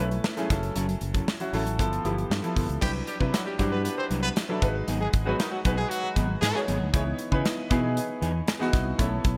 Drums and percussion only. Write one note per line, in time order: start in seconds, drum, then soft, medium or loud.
0.11 closed hi-hat soft
0.24 snare loud
0.37 snare soft
0.37 closed hi-hat soft
0.50 kick loud
0.50 snare soft
0.50 closed hi-hat medium
0.63 closed hi-hat soft
0.76 closed hi-hat loud
0.89 closed hi-hat medium
1.01 closed hi-hat medium
1.14 kick medium
1.14 closed hi-hat soft
1.28 snare loud
1.40 closed hi-hat soft
1.53 open hi-hat medium
1.67 closed hi-hat medium
1.79 kick medium
1.79 closed hi-hat medium
1.93 closed hi-hat soft
2.05 closed hi-hat medium
2.18 closed hi-hat soft
2.31 snare loud
2.44 closed hi-hat soft
2.56 kick medium
2.56 open hi-hat medium
2.69 closed hi-hat soft
2.82 kick loud
2.82 crash medium
3.07 closed hi-hat medium
3.21 kick medium
3.34 snare loud
3.34 closed hi-hat medium
3.59 kick medium
3.59 closed hi-hat medium
3.85 closed hi-hat medium
4.11 closed hi-hat medium
4.36 snare loud
4.36 closed hi-hat medium
4.62 kick loud
4.62 closed hi-hat medium
4.88 closed hi-hat medium
5.13 kick loud
5.13 closed hi-hat medium
5.40 snare loud
5.40 closed hi-hat medium
5.65 kick medium
5.65 closed hi-hat medium
5.91 closed hi-hat medium
6.16 kick medium
6.16 closed hi-hat medium
6.42 snare loud
6.42 closed hi-hat medium
6.56 snare soft
6.68 closed hi-hat medium
6.94 kick loud
6.94 closed hi-hat loud
7.19 closed hi-hat medium
7.32 kick medium
7.45 snare loud
7.45 closed hi-hat medium
7.71 kick medium
7.71 closed hi-hat medium
7.97 closed hi-hat medium
8.22 closed hi-hat medium
8.48 snare loud
8.48 closed hi-hat medium
8.61 snare soft
8.73 kick loud
8.73 snare soft
8.73 closed hi-hat medium
8.99 kick loud
8.99 closed hi-hat loud
9.24 kick loud
9.24 closed hi-hat medium